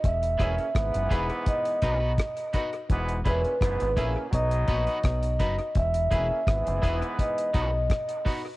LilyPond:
<<
  \new Staff \with { instrumentName = "Vibraphone" } { \time 4/4 \key b \major \tempo 4 = 84 e''4. r8 dis''4. r8 | r8 b'4 r8 dis''2 | e''4. r8 dis''4. r8 | }
  \new Staff \with { instrumentName = "Upright piano" } { \time 4/4 \key b \major r8 <e' gis' b' e''>16 r8. <e' gis' b' e''>16 r8. <dis' fis' b' dis''>16 r8. <dis' fis' b' dis''>16 r16 | r8 <e' gis' b' e''>16 r8. <e' gis' b' e''>16 r8. <dis' fis' b' dis''>16 r8. <dis' fis' b' dis''>16 r16 | r8 <e' gis' b' e''>16 r8. <e' gis' b' e''>16 r8. <dis' fis' b' dis''>16 r8. <dis' fis' b' dis''>16 r16 | }
  \new Staff \with { instrumentName = "Clean electric guitar" } { \time 4/4 \key b \major r8 <b e' gis' b'>16 r8. <b e' gis' b'>16 r8. <b dis' fis' b'>16 <b dis' fis' b'>16 r8 <b dis' fis' b'>16 r16 | r8 <b e' gis' b'>16 r8. <b e' gis' b'>16 r8. <b dis' fis' b'>16 <b dis' fis' b'>16 r8 <b dis' fis' b'>16 r16 | r8 <b e' gis' b'>16 r8. <b e' gis' b'>16 r8. <b dis' fis' b'>16 r8. <b dis' fis' b'>16 r16 | }
  \new Staff \with { instrumentName = "Trombone section" } { \clef bass \time 4/4 \key b \major r8 <cis ais cis'>8 <gis, e b>4. <b, fis dis'>16 r4 r16 | <gis, e b>8 <ais, cis cis'>8 <gis, e b>8 <cis ais cis'>8 <b, fis dis'>4. r8 | r8 <cis ais cis'>8 <gis, e b>4. <b, fis dis'>16 r4 r16 | }
  \new Staff \with { instrumentName = "Fingered electric bass" } { \clef bass \time 4/4 \key b \major e,,8 e,,16 r16 gis,,16 fis,,16 e,,16 r8. b,,8 r4 | e,,8 e,,16 r16 fis,,16 gis,,16 ais,,16 r16 b,,8 ais,,16 r16 b,,8 fis,,16 r16 | e,,8 e,,16 r16 gis,,16 fis,,16 e,,16 r8. b,,8 r4 | }
  \new DrumStaff \with { instrumentName = "Drums" } \drummode { \time 4/4 <hh bd>16 hh16 <hh bd ss>16 hh16 <hh bd ss>16 hh16 <hh bd>16 hh16 <hh bd>16 hh16 <hh bd>8 <hh bd ss>16 hh16 <hh bd>16 hh16 | <hh bd>16 hh16 <hh bd>16 hh16 <hh bd ss>16 hh16 <hh bd>8 <hh bd>16 hh16 <hh bd>16 hh16 <hh bd ss>16 hh16 <hh bd>16 hh16 | <hh bd>16 hh16 <hh bd>8 <hh bd ss>16 hh16 <hh bd>16 hh16 <hh bd>16 hh16 <hh bd>8 <hh bd ss>16 hh16 <hho bd>8 | }
>>